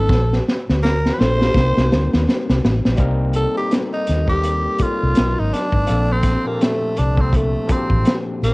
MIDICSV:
0, 0, Header, 1, 6, 480
1, 0, Start_track
1, 0, Tempo, 722892
1, 63, Time_signature, 4, 2, 24, 8
1, 5669, End_track
2, 0, Start_track
2, 0, Title_t, "Tenor saxophone"
2, 0, Program_c, 0, 66
2, 0, Note_on_c, 0, 69, 89
2, 314, Note_off_c, 0, 69, 0
2, 552, Note_on_c, 0, 70, 93
2, 756, Note_on_c, 0, 71, 75
2, 766, Note_off_c, 0, 70, 0
2, 790, Note_on_c, 0, 72, 106
2, 800, Note_off_c, 0, 71, 0
2, 1507, Note_off_c, 0, 72, 0
2, 2230, Note_on_c, 0, 69, 93
2, 2357, Note_off_c, 0, 69, 0
2, 2373, Note_on_c, 0, 67, 85
2, 2479, Note_off_c, 0, 67, 0
2, 2613, Note_on_c, 0, 63, 84
2, 2832, Note_off_c, 0, 63, 0
2, 2851, Note_on_c, 0, 67, 94
2, 3202, Note_on_c, 0, 65, 90
2, 3212, Note_off_c, 0, 67, 0
2, 3582, Note_on_c, 0, 63, 83
2, 3592, Note_off_c, 0, 65, 0
2, 3676, Note_on_c, 0, 62, 101
2, 3686, Note_off_c, 0, 63, 0
2, 4065, Note_on_c, 0, 60, 85
2, 4075, Note_off_c, 0, 62, 0
2, 4296, Note_on_c, 0, 58, 78
2, 4306, Note_off_c, 0, 60, 0
2, 4397, Note_on_c, 0, 57, 86
2, 4407, Note_off_c, 0, 58, 0
2, 4637, Note_on_c, 0, 62, 81
2, 4647, Note_off_c, 0, 57, 0
2, 4789, Note_on_c, 0, 60, 77
2, 4799, Note_off_c, 0, 62, 0
2, 4887, Note_on_c, 0, 57, 89
2, 4897, Note_off_c, 0, 60, 0
2, 5121, Note_on_c, 0, 60, 79
2, 5131, Note_off_c, 0, 57, 0
2, 5423, Note_off_c, 0, 60, 0
2, 5603, Note_on_c, 0, 58, 82
2, 5669, Note_off_c, 0, 58, 0
2, 5669, End_track
3, 0, Start_track
3, 0, Title_t, "Tine electric piano"
3, 0, Program_c, 1, 4
3, 0, Control_c, 1, 64, 127
3, 0, Note_on_c, 1, 54, 70
3, 0, Note_on_c, 1, 59, 64
3, 0, Note_on_c, 1, 61, 66
3, 0, Note_on_c, 1, 63, 66
3, 0, Note_on_c, 1, 71, 77
3, 73, Note_off_c, 1, 61, 0
3, 73, Control_c, 1, 64, 0
3, 74, Note_off_c, 1, 54, 0
3, 75, Note_off_c, 1, 63, 0
3, 78, Note_off_c, 1, 59, 0
3, 78, Note_off_c, 1, 71, 0
3, 201, Control_c, 1, 64, 127
3, 778, Note_on_c, 1, 53, 69
3, 786, Note_on_c, 1, 58, 63
3, 790, Note_on_c, 1, 60, 62
3, 794, Note_on_c, 1, 62, 62
3, 800, Note_on_c, 1, 69, 79
3, 893, Note_off_c, 1, 53, 0
3, 897, Note_off_c, 1, 58, 0
3, 899, Note_off_c, 1, 60, 0
3, 901, Note_off_c, 1, 62, 0
3, 904, Note_off_c, 1, 69, 0
3, 914, Note_on_c, 1, 53, 65
3, 921, Note_on_c, 1, 58, 63
3, 927, Note_on_c, 1, 60, 62
3, 933, Note_on_c, 1, 62, 62
3, 937, Note_on_c, 1, 67, 77
3, 1016, Note_off_c, 1, 58, 0
3, 1018, Note_on_c, 1, 55, 73
3, 1019, Note_off_c, 1, 53, 0
3, 1023, Note_off_c, 1, 60, 0
3, 1024, Note_on_c, 1, 58, 64
3, 1028, Note_off_c, 1, 62, 0
3, 1030, Note_off_c, 1, 67, 0
3, 1031, Control_c, 1, 64, 0
3, 1031, Note_on_c, 1, 60, 65
3, 1035, Note_on_c, 1, 63, 68
3, 1040, Note_on_c, 1, 70, 77
3, 1135, Control_c, 1, 64, 127
3, 1803, Note_off_c, 1, 55, 0
3, 1806, Note_off_c, 1, 58, 0
3, 1810, Note_off_c, 1, 60, 0
3, 1812, Note_off_c, 1, 63, 0
3, 1814, Note_off_c, 1, 70, 0
3, 1969, Note_on_c, 1, 55, 102
3, 1975, Note_on_c, 1, 58, 86
3, 1977, Note_on_c, 1, 60, 90
3, 1987, Note_on_c, 1, 63, 88
3, 1991, Control_c, 1, 64, 0
3, 1992, Note_on_c, 1, 70, 112
3, 2116, Control_c, 1, 64, 127
3, 2275, Note_off_c, 1, 55, 0
3, 2278, Note_off_c, 1, 58, 0
3, 2279, Note_off_c, 1, 60, 0
3, 2284, Note_off_c, 1, 63, 0
3, 2286, Note_off_c, 1, 70, 0
3, 2355, Note_on_c, 1, 55, 63
3, 2359, Note_on_c, 1, 58, 57
3, 2364, Note_on_c, 1, 60, 57
3, 2371, Note_on_c, 1, 63, 58
3, 2378, Note_on_c, 1, 69, 70
3, 2730, Note_off_c, 1, 55, 0
3, 2733, Note_off_c, 1, 58, 0
3, 2735, Note_off_c, 1, 60, 0
3, 2739, Note_off_c, 1, 63, 0
3, 2742, Note_off_c, 1, 69, 0
3, 2836, Note_on_c, 1, 55, 65
3, 2842, Note_on_c, 1, 58, 59
3, 2850, Note_on_c, 1, 60, 61
3, 2854, Note_on_c, 1, 63, 60
3, 2858, Note_on_c, 1, 70, 70
3, 3121, Note_off_c, 1, 55, 0
3, 3124, Note_off_c, 1, 58, 0
3, 3128, Note_off_c, 1, 60, 0
3, 3130, Note_off_c, 1, 63, 0
3, 3132, Note_off_c, 1, 70, 0
3, 3177, Note_on_c, 1, 55, 65
3, 3179, Note_on_c, 1, 58, 57
3, 3186, Note_on_c, 1, 60, 59
3, 3191, Note_on_c, 1, 63, 58
3, 3195, Note_on_c, 1, 69, 69
3, 3414, Note_on_c, 1, 54, 70
3, 3420, Note_off_c, 1, 55, 0
3, 3421, Note_off_c, 1, 58, 0
3, 3421, Note_on_c, 1, 59, 59
3, 3422, Note_off_c, 1, 63, 0
3, 3425, Note_off_c, 1, 60, 0
3, 3426, Note_on_c, 1, 61, 58
3, 3429, Note_off_c, 1, 69, 0
3, 3430, Control_c, 1, 64, 0
3, 3430, Note_on_c, 1, 63, 64
3, 3435, Note_on_c, 1, 70, 78
3, 3543, Control_c, 1, 64, 127
3, 3821, Note_off_c, 1, 54, 0
3, 3825, Note_off_c, 1, 59, 0
3, 3827, Note_off_c, 1, 61, 0
3, 3829, Note_off_c, 1, 63, 0
3, 3831, Note_off_c, 1, 70, 0
3, 3893, Note_on_c, 1, 53, 84
3, 3898, Note_on_c, 1, 58, 78
3, 3902, Note_on_c, 1, 60, 77
3, 3910, Note_on_c, 1, 62, 77
3, 3911, Note_on_c, 1, 69, 93
3, 3913, Control_c, 1, 64, 0
3, 4042, Control_c, 1, 64, 127
3, 4196, Note_off_c, 1, 53, 0
3, 4199, Note_off_c, 1, 58, 0
3, 4201, Note_off_c, 1, 60, 0
3, 4205, Note_off_c, 1, 62, 0
3, 4205, Note_off_c, 1, 69, 0
3, 4274, Note_on_c, 1, 53, 68
3, 4279, Note_on_c, 1, 46, 59
3, 4285, Note_on_c, 1, 60, 64
3, 4291, Note_on_c, 1, 62, 59
3, 4300, Note_on_c, 1, 67, 58
3, 4327, Note_off_c, 1, 67, 0
3, 4343, Note_on_c, 1, 69, 71
3, 4650, Note_off_c, 1, 53, 0
3, 4653, Note_off_c, 1, 46, 0
3, 4656, Note_off_c, 1, 60, 0
3, 4659, Note_off_c, 1, 62, 0
3, 4685, Note_off_c, 1, 69, 0
3, 4756, Note_on_c, 1, 53, 68
3, 4763, Note_on_c, 1, 58, 64
3, 4766, Note_on_c, 1, 60, 63
3, 4772, Note_on_c, 1, 62, 63
3, 4777, Note_on_c, 1, 69, 73
3, 5041, Note_off_c, 1, 53, 0
3, 5045, Note_off_c, 1, 58, 0
3, 5047, Note_off_c, 1, 60, 0
3, 5049, Note_off_c, 1, 62, 0
3, 5052, Note_off_c, 1, 69, 0
3, 5094, Note_on_c, 1, 53, 72
3, 5099, Note_on_c, 1, 58, 64
3, 5108, Note_on_c, 1, 60, 63
3, 5112, Note_on_c, 1, 62, 64
3, 5115, Note_on_c, 1, 66, 60
3, 5160, Note_off_c, 1, 66, 0
3, 5160, Note_on_c, 1, 67, 74
3, 5669, Note_off_c, 1, 53, 0
3, 5669, Note_off_c, 1, 58, 0
3, 5669, Note_off_c, 1, 60, 0
3, 5669, Note_off_c, 1, 62, 0
3, 5669, Note_off_c, 1, 67, 0
3, 5669, End_track
4, 0, Start_track
4, 0, Title_t, "Fingered electric bass"
4, 0, Program_c, 2, 33
4, 68, Note_on_c, 2, 34, 106
4, 258, Note_off_c, 2, 34, 0
4, 462, Note_on_c, 2, 38, 91
4, 726, Note_off_c, 2, 38, 0
4, 799, Note_on_c, 2, 34, 84
4, 985, Note_off_c, 2, 34, 0
4, 1036, Note_on_c, 2, 36, 93
4, 1142, Note_off_c, 2, 36, 0
4, 1179, Note_on_c, 2, 36, 86
4, 1253, Note_off_c, 2, 36, 0
4, 1282, Note_on_c, 2, 38, 82
4, 1386, Note_off_c, 2, 38, 0
4, 1421, Note_on_c, 2, 39, 79
4, 1494, Note_off_c, 2, 39, 0
4, 1658, Note_on_c, 2, 36, 73
4, 1732, Note_off_c, 2, 36, 0
4, 1758, Note_on_c, 2, 33, 80
4, 1864, Note_off_c, 2, 33, 0
4, 1899, Note_on_c, 2, 34, 81
4, 1973, Note_off_c, 2, 34, 0
4, 1989, Note_on_c, 2, 36, 100
4, 2290, Note_off_c, 2, 36, 0
4, 2718, Note_on_c, 2, 39, 80
4, 3096, Note_off_c, 2, 39, 0
4, 3341, Note_on_c, 2, 36, 77
4, 3414, Note_off_c, 2, 36, 0
4, 3441, Note_on_c, 2, 35, 88
4, 3546, Note_off_c, 2, 35, 0
4, 3582, Note_on_c, 2, 32, 83
4, 3655, Note_off_c, 2, 32, 0
4, 3807, Note_on_c, 2, 32, 78
4, 3885, Note_off_c, 2, 32, 0
4, 3917, Note_on_c, 2, 34, 97
4, 4215, Note_off_c, 2, 34, 0
4, 4641, Note_on_c, 2, 36, 82
4, 5018, Note_off_c, 2, 36, 0
4, 5253, Note_on_c, 2, 33, 86
4, 5329, Note_off_c, 2, 33, 0
4, 5594, Note_on_c, 2, 34, 77
4, 5669, Note_off_c, 2, 34, 0
4, 5669, End_track
5, 0, Start_track
5, 0, Title_t, "Muted fingered electric bass strokes"
5, 3191, Note_on_c, 9, 29, 42
5, 3257, Note_off_c, 9, 29, 0
5, 5117, Note_on_c, 9, 29, 44
5, 5183, Note_off_c, 9, 29, 0
5, 5669, End_track
6, 0, Start_track
6, 0, Title_t, "Drums"
6, 61, Note_on_c, 9, 36, 110
6, 75, Note_on_c, 9, 38, 57
6, 127, Note_off_c, 9, 36, 0
6, 141, Note_off_c, 9, 38, 0
6, 218, Note_on_c, 9, 38, 45
6, 284, Note_off_c, 9, 38, 0
6, 321, Note_on_c, 9, 38, 62
6, 387, Note_off_c, 9, 38, 0
6, 460, Note_on_c, 9, 38, 57
6, 527, Note_off_c, 9, 38, 0
6, 561, Note_on_c, 9, 38, 63
6, 628, Note_off_c, 9, 38, 0
6, 700, Note_on_c, 9, 38, 57
6, 767, Note_off_c, 9, 38, 0
6, 800, Note_on_c, 9, 38, 73
6, 866, Note_off_c, 9, 38, 0
6, 939, Note_on_c, 9, 38, 62
6, 1006, Note_off_c, 9, 38, 0
6, 1026, Note_on_c, 9, 36, 89
6, 1039, Note_on_c, 9, 38, 73
6, 1092, Note_off_c, 9, 36, 0
6, 1105, Note_off_c, 9, 38, 0
6, 1178, Note_on_c, 9, 38, 67
6, 1245, Note_off_c, 9, 38, 0
6, 1277, Note_on_c, 9, 38, 88
6, 1344, Note_off_c, 9, 38, 0
6, 1418, Note_on_c, 9, 38, 74
6, 1484, Note_off_c, 9, 38, 0
6, 1519, Note_on_c, 9, 38, 84
6, 1586, Note_off_c, 9, 38, 0
6, 1658, Note_on_c, 9, 38, 77
6, 1724, Note_off_c, 9, 38, 0
6, 1759, Note_on_c, 9, 38, 95
6, 1825, Note_off_c, 9, 38, 0
6, 1895, Note_on_c, 9, 38, 84
6, 1961, Note_off_c, 9, 38, 0
6, 1973, Note_on_c, 9, 42, 75
6, 1981, Note_on_c, 9, 36, 100
6, 2040, Note_off_c, 9, 42, 0
6, 2047, Note_off_c, 9, 36, 0
6, 2214, Note_on_c, 9, 42, 64
6, 2280, Note_off_c, 9, 42, 0
6, 2466, Note_on_c, 9, 42, 65
6, 2476, Note_on_c, 9, 38, 90
6, 2532, Note_off_c, 9, 42, 0
6, 2542, Note_off_c, 9, 38, 0
6, 2703, Note_on_c, 9, 42, 63
6, 2717, Note_on_c, 9, 38, 32
6, 2769, Note_off_c, 9, 42, 0
6, 2784, Note_off_c, 9, 38, 0
6, 2841, Note_on_c, 9, 36, 73
6, 2907, Note_off_c, 9, 36, 0
6, 2945, Note_on_c, 9, 42, 79
6, 3012, Note_off_c, 9, 42, 0
6, 3178, Note_on_c, 9, 42, 69
6, 3186, Note_on_c, 9, 36, 83
6, 3245, Note_off_c, 9, 42, 0
6, 3252, Note_off_c, 9, 36, 0
6, 3420, Note_on_c, 9, 42, 78
6, 3435, Note_on_c, 9, 38, 100
6, 3486, Note_off_c, 9, 42, 0
6, 3502, Note_off_c, 9, 38, 0
6, 3675, Note_on_c, 9, 42, 72
6, 3682, Note_on_c, 9, 38, 34
6, 3741, Note_off_c, 9, 42, 0
6, 3748, Note_off_c, 9, 38, 0
6, 3800, Note_on_c, 9, 36, 77
6, 3866, Note_off_c, 9, 36, 0
6, 3897, Note_on_c, 9, 42, 70
6, 3963, Note_off_c, 9, 42, 0
6, 4135, Note_on_c, 9, 42, 67
6, 4138, Note_on_c, 9, 36, 89
6, 4158, Note_on_c, 9, 38, 32
6, 4202, Note_off_c, 9, 42, 0
6, 4205, Note_off_c, 9, 36, 0
6, 4224, Note_off_c, 9, 38, 0
6, 4389, Note_on_c, 9, 42, 64
6, 4399, Note_on_c, 9, 38, 90
6, 4455, Note_off_c, 9, 42, 0
6, 4466, Note_off_c, 9, 38, 0
6, 4626, Note_on_c, 9, 42, 70
6, 4692, Note_off_c, 9, 42, 0
6, 4764, Note_on_c, 9, 36, 74
6, 4830, Note_off_c, 9, 36, 0
6, 4866, Note_on_c, 9, 36, 90
6, 4872, Note_on_c, 9, 42, 82
6, 4932, Note_off_c, 9, 36, 0
6, 4939, Note_off_c, 9, 42, 0
6, 5105, Note_on_c, 9, 42, 67
6, 5109, Note_on_c, 9, 36, 92
6, 5171, Note_off_c, 9, 42, 0
6, 5175, Note_off_c, 9, 36, 0
6, 5245, Note_on_c, 9, 36, 76
6, 5312, Note_off_c, 9, 36, 0
6, 5346, Note_on_c, 9, 42, 75
6, 5361, Note_on_c, 9, 38, 99
6, 5412, Note_off_c, 9, 42, 0
6, 5428, Note_off_c, 9, 38, 0
6, 5600, Note_on_c, 9, 42, 75
6, 5607, Note_on_c, 9, 38, 35
6, 5667, Note_off_c, 9, 42, 0
6, 5669, Note_off_c, 9, 38, 0
6, 5669, End_track
0, 0, End_of_file